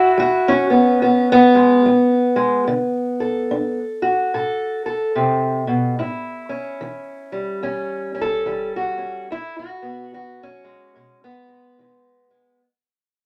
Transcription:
0, 0, Header, 1, 2, 480
1, 0, Start_track
1, 0, Tempo, 827586
1, 1550, Time_signature, 4, 2, 24, 8
1, 7688, End_track
2, 0, Start_track
2, 0, Title_t, "Steel-string acoustic guitar"
2, 0, Program_c, 0, 25
2, 0, Note_on_c, 0, 40, 70
2, 0, Note_on_c, 0, 64, 89
2, 0, Note_on_c, 0, 66, 86
2, 70, Note_off_c, 0, 40, 0
2, 103, Note_on_c, 0, 56, 61
2, 107, Note_off_c, 0, 66, 0
2, 114, Note_on_c, 0, 66, 79
2, 275, Note_off_c, 0, 64, 0
2, 280, Note_on_c, 0, 61, 79
2, 404, Note_off_c, 0, 66, 0
2, 406, Note_on_c, 0, 59, 50
2, 550, Note_off_c, 0, 56, 0
2, 587, Note_off_c, 0, 59, 0
2, 591, Note_on_c, 0, 40, 69
2, 594, Note_on_c, 0, 59, 48
2, 753, Note_off_c, 0, 59, 0
2, 766, Note_on_c, 0, 59, 104
2, 898, Note_on_c, 0, 56, 48
2, 1034, Note_off_c, 0, 40, 0
2, 1070, Note_off_c, 0, 56, 0
2, 1077, Note_on_c, 0, 56, 58
2, 1234, Note_off_c, 0, 61, 0
2, 1362, Note_off_c, 0, 56, 0
2, 1369, Note_on_c, 0, 56, 47
2, 1529, Note_off_c, 0, 56, 0
2, 1552, Note_on_c, 0, 50, 69
2, 1857, Note_on_c, 0, 69, 46
2, 1993, Note_off_c, 0, 50, 0
2, 2036, Note_on_c, 0, 62, 58
2, 2195, Note_off_c, 0, 59, 0
2, 2333, Note_on_c, 0, 66, 47
2, 2475, Note_off_c, 0, 62, 0
2, 2517, Note_off_c, 0, 69, 0
2, 2517, Note_on_c, 0, 45, 61
2, 2520, Note_on_c, 0, 69, 50
2, 2808, Note_off_c, 0, 69, 0
2, 2818, Note_on_c, 0, 69, 47
2, 2956, Note_off_c, 0, 45, 0
2, 2989, Note_on_c, 0, 48, 63
2, 3284, Note_off_c, 0, 48, 0
2, 3290, Note_on_c, 0, 47, 62
2, 3449, Note_off_c, 0, 66, 0
2, 3452, Note_off_c, 0, 69, 0
2, 3470, Note_off_c, 0, 47, 0
2, 3473, Note_on_c, 0, 45, 67
2, 3477, Note_on_c, 0, 64, 45
2, 3766, Note_on_c, 0, 61, 46
2, 3913, Note_off_c, 0, 45, 0
2, 3949, Note_on_c, 0, 52, 60
2, 4247, Note_on_c, 0, 55, 47
2, 4391, Note_off_c, 0, 52, 0
2, 4420, Note_off_c, 0, 61, 0
2, 4423, Note_on_c, 0, 40, 63
2, 4427, Note_on_c, 0, 61, 49
2, 4718, Note_off_c, 0, 61, 0
2, 4725, Note_on_c, 0, 61, 44
2, 4762, Note_off_c, 0, 64, 0
2, 4764, Note_on_c, 0, 69, 79
2, 4868, Note_off_c, 0, 40, 0
2, 4904, Note_off_c, 0, 55, 0
2, 4905, Note_on_c, 0, 52, 62
2, 4911, Note_on_c, 0, 55, 47
2, 5076, Note_off_c, 0, 69, 0
2, 5082, Note_on_c, 0, 66, 77
2, 5199, Note_off_c, 0, 61, 0
2, 5206, Note_on_c, 0, 61, 42
2, 5349, Note_off_c, 0, 52, 0
2, 5367, Note_off_c, 0, 61, 0
2, 5389, Note_off_c, 0, 55, 0
2, 5395, Note_off_c, 0, 66, 0
2, 5397, Note_on_c, 0, 40, 76
2, 5404, Note_on_c, 0, 64, 91
2, 5556, Note_off_c, 0, 64, 0
2, 5563, Note_on_c, 0, 66, 93
2, 5698, Note_on_c, 0, 59, 46
2, 5835, Note_off_c, 0, 40, 0
2, 5875, Note_off_c, 0, 66, 0
2, 5879, Note_on_c, 0, 52, 55
2, 5883, Note_on_c, 0, 66, 77
2, 6035, Note_off_c, 0, 59, 0
2, 6051, Note_on_c, 0, 61, 86
2, 6173, Note_on_c, 0, 56, 46
2, 6317, Note_off_c, 0, 52, 0
2, 6352, Note_off_c, 0, 56, 0
2, 6354, Note_on_c, 0, 47, 63
2, 6358, Note_on_c, 0, 56, 47
2, 6516, Note_off_c, 0, 66, 0
2, 6517, Note_off_c, 0, 61, 0
2, 6519, Note_on_c, 0, 59, 92
2, 6650, Note_off_c, 0, 56, 0
2, 6661, Note_on_c, 0, 56, 46
2, 6795, Note_off_c, 0, 47, 0
2, 6837, Note_off_c, 0, 56, 0
2, 6838, Note_on_c, 0, 52, 59
2, 6847, Note_on_c, 0, 56, 46
2, 7130, Note_off_c, 0, 56, 0
2, 7137, Note_on_c, 0, 56, 47
2, 7278, Note_off_c, 0, 52, 0
2, 7294, Note_off_c, 0, 56, 0
2, 7315, Note_off_c, 0, 59, 0
2, 7688, End_track
0, 0, End_of_file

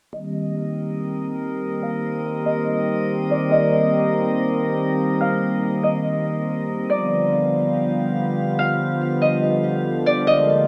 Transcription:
0, 0, Header, 1, 4, 480
1, 0, Start_track
1, 0, Key_signature, -3, "minor"
1, 0, Tempo, 422535
1, 150, Time_signature, 4, 2, 24, 8
1, 12127, End_track
2, 0, Start_track
2, 0, Title_t, "Harp"
2, 0, Program_c, 0, 46
2, 146, Note_on_c, 0, 75, 84
2, 2071, Note_on_c, 0, 77, 94
2, 2173, Note_off_c, 0, 75, 0
2, 2787, Note_on_c, 0, 75, 78
2, 3752, Note_on_c, 0, 74, 80
2, 3820, Note_off_c, 0, 75, 0
2, 3962, Note_off_c, 0, 77, 0
2, 3988, Note_on_c, 0, 75, 106
2, 4056, Note_off_c, 0, 74, 0
2, 5914, Note_on_c, 0, 77, 101
2, 6014, Note_off_c, 0, 75, 0
2, 6627, Note_on_c, 0, 75, 75
2, 7805, Note_off_c, 0, 77, 0
2, 7835, Note_on_c, 0, 74, 92
2, 7903, Note_off_c, 0, 75, 0
2, 9756, Note_on_c, 0, 77, 96
2, 9933, Note_off_c, 0, 74, 0
2, 10469, Note_on_c, 0, 75, 84
2, 11432, Note_on_c, 0, 74, 91
2, 11500, Note_off_c, 0, 75, 0
2, 11647, Note_off_c, 0, 77, 0
2, 11668, Note_on_c, 0, 75, 96
2, 11736, Note_off_c, 0, 74, 0
2, 12127, Note_off_c, 0, 75, 0
2, 12127, End_track
3, 0, Start_track
3, 0, Title_t, "Synth texture"
3, 0, Program_c, 1, 99
3, 149, Note_on_c, 1, 70, 70
3, 149, Note_on_c, 1, 75, 85
3, 150, Note_on_c, 1, 60, 77
3, 7784, Note_off_c, 1, 60, 0
3, 7784, Note_off_c, 1, 70, 0
3, 7784, Note_off_c, 1, 75, 0
3, 7831, Note_on_c, 1, 59, 76
3, 7831, Note_on_c, 1, 67, 69
3, 7831, Note_on_c, 1, 77, 83
3, 11632, Note_off_c, 1, 59, 0
3, 11632, Note_off_c, 1, 67, 0
3, 11632, Note_off_c, 1, 77, 0
3, 11669, Note_on_c, 1, 86, 84
3, 11670, Note_on_c, 1, 58, 74
3, 11670, Note_on_c, 1, 68, 73
3, 12127, Note_off_c, 1, 58, 0
3, 12127, Note_off_c, 1, 68, 0
3, 12127, Note_off_c, 1, 86, 0
3, 12127, End_track
4, 0, Start_track
4, 0, Title_t, "Analog synth pad"
4, 0, Program_c, 2, 89
4, 149, Note_on_c, 2, 51, 71
4, 149, Note_on_c, 2, 55, 67
4, 149, Note_on_c, 2, 58, 67
4, 149, Note_on_c, 2, 60, 68
4, 149, Note_on_c, 2, 67, 82
4, 7784, Note_off_c, 2, 51, 0
4, 7784, Note_off_c, 2, 58, 0
4, 7784, Note_off_c, 2, 60, 0
4, 7784, Note_off_c, 2, 67, 0
4, 7830, Note_on_c, 2, 50, 75
4, 7830, Note_on_c, 2, 53, 67
4, 7830, Note_on_c, 2, 59, 69
4, 7830, Note_on_c, 2, 65, 82
4, 11624, Note_off_c, 2, 55, 0
4, 11631, Note_off_c, 2, 59, 0
4, 11631, Note_off_c, 2, 65, 0
4, 11669, Note_on_c, 2, 56, 69
4, 11669, Note_on_c, 2, 58, 71
4, 11669, Note_on_c, 2, 65, 80
4, 12127, Note_off_c, 2, 50, 0
4, 12127, Note_off_c, 2, 53, 0
4, 12127, Note_off_c, 2, 56, 0
4, 12127, Note_off_c, 2, 58, 0
4, 12127, Note_off_c, 2, 65, 0
4, 12127, End_track
0, 0, End_of_file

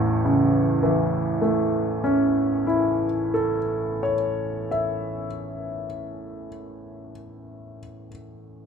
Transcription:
0, 0, Header, 1, 2, 480
1, 0, Start_track
1, 0, Key_signature, 3, "major"
1, 0, Tempo, 2006689
1, 2072, End_track
2, 0, Start_track
2, 0, Title_t, "Grand piano"
2, 0, Program_c, 0, 0
2, 0, Control_c, 0, 64, 127
2, 0, Note_on_c, 0, 33, 47
2, 0, Note_on_c, 0, 40, 42
2, 0, Note_on_c, 0, 45, 38
2, 59, Note_on_c, 0, 49, 36
2, 198, Note_on_c, 0, 52, 39
2, 338, Note_on_c, 0, 57, 40
2, 487, Note_on_c, 0, 61, 35
2, 638, Note_on_c, 0, 64, 36
2, 726, Note_off_c, 0, 33, 0
2, 799, Note_on_c, 0, 69, 34
2, 857, Note_off_c, 0, 40, 0
2, 964, Note_on_c, 0, 73, 34
2, 986, Note_off_c, 0, 45, 0
2, 1121, Note_off_c, 0, 49, 0
2, 1128, Note_on_c, 0, 76, 32
2, 1260, Note_off_c, 0, 52, 0
2, 1400, Note_off_c, 0, 57, 0
2, 1549, Note_off_c, 0, 61, 0
2, 1700, Note_off_c, 0, 64, 0
2, 1861, Note_off_c, 0, 69, 0
2, 1932, Note_off_c, 0, 76, 0
2, 1935, Note_off_c, 0, 73, 0
2, 2072, End_track
0, 0, End_of_file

